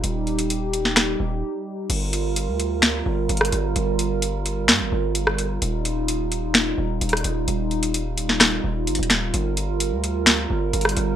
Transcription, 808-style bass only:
X:1
M:4/4
L:1/16
Q:1/4=129
K:Gm
V:1 name="808-style bass" clef=bass
E,,,8- E,,,2 E,,,2 z4 | G,,,4- G,,, D,,4- D,, G,,,2 G,,,2 G,,,2 | G,,,8 G,, G,,, G,,,6 | E,,,8- E,,,2 E,,,2 E,,,2 E,,,2 |
E,,,8- E,,,2 E,,,2 G,,, E,,,3 | G,,,4- G,,, D,,4- D,, G,,,2 G,,,2 G,,,2 |]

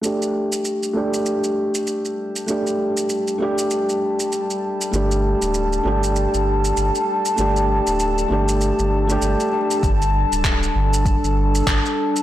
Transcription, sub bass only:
X:1
M:4/4
L:1/16
Q:"Swing 16ths" 1/4=98
K:Cmix
V:1 name="Sub bass" clef=bass
z16 | z16 | G,,,3 D,,,3 G,,,3 G,,,3 G,,, z3 | G,,,3 D,,,3 G,,,3 G,,,3 G,,, z3 |
G,,,3 D,,,3 G,,,3 G,,,3 G,,, z3 |]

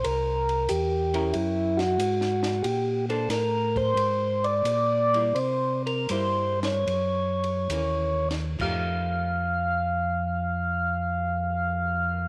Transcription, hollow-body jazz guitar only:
X:1
M:4/4
L:1/8
Q:"Swing" 1/4=83
K:Fmix
V:1 name="Hollow-body jazz guitar"
z3 [_D=EB]3 z2 | z [B,DAc] z4 z [G,B,=E] | z2 [G,B,=E] z3 [_F,B,_D] z | [F,A,EG]8 |]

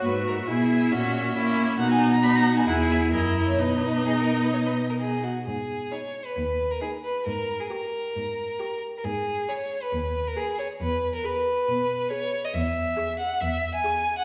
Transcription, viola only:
X:1
M:4/4
L:1/8
Q:1/4=136
K:B
V:1 name="Viola"
F2 E2 C2 C2 | D2 D2 E2 E2 | D6- D z | [K:G#m] z2 D2 z2 D2 |
z2 =G2 z2 G2 | z2 G2 z2 G2 | z2 G2 z2 G2 | [K:C#dor] z2 G2 z2 G2 |]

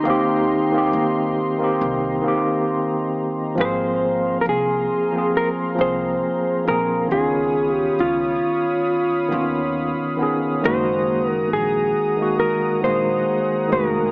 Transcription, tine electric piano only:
X:1
M:4/4
L:1/16
Q:"Swing 16ths" 1/4=68
K:Ablyd
V:1 name="Tine electric piano"
[E,B,CG]3 [E,B,CG]4 [E,B,CG]3 [E,B,CG]4- [E,B,CG] z | [F,B,CA]6 z [F,B,CA]3 [F,B,CA]4 [F,B,CA]2 | [E,_C_DF]6- [E,CDF] z3 [E,CDF]4 [E,CDA]2 | [E,A,B,_G]6 z [E,A,B,G]3 [E,A,B,A]4 [E,A,B,G]2 |]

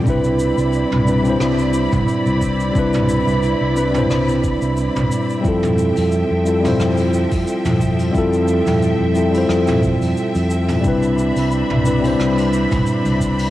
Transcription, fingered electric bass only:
X:1
M:4/4
L:1/16
Q:"Swing 16ths" 1/4=89
K:Flyd
V:1 name="Fingered electric bass" clef=bass
C,,3 C,,2 C,,3 C,,3 C,, z C,,3 | C,,3 C,,2 C,,3 C,,3 C,,2 C,, z2 | F,,3 F,,2 F,,3 F,,3 F,, z F,,3 | F,,3 F,,2 F,,3 F,,3 F,, z F,,3 |
C,,3 C,,2 C,,3 C,,3 C,, z C,,3 |]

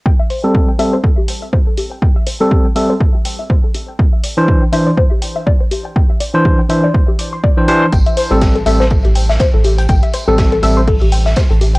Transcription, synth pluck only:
X:1
M:4/4
L:1/16
Q:"Swing 16ths" 1/4=122
K:Am
V:1 name="Synth pluck"
g e c A G g e c A G g e c A G g | g e c A G g e c A G g e c A G g | g e d c G g e d c G g e d c G g | g e d c G g e d c G d' c' d g G c' |
g e c A G A e c A G g e c A G g | g e c A G A e c A G g e c A G g |]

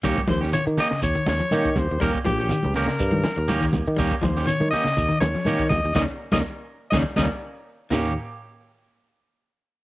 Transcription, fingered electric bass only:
X:1
M:4/4
L:1/16
Q:"Swing 16ths" 1/4=122
K:Ebmix
V:1 name="Fingered electric bass" clef=bass
E,, z E,,2 z E, z2 E,, z E,, z E,2 E,, E,, | E,, z B,,,2 z D,,2 z G,,2 z E,,4 E, | E,, z E,,2 z E, z2 E,, z E,, z E,2 E,, E,, | E,, z2 E,, z4 E,, z E,, z4 z |
E,,2 z12 z2 |]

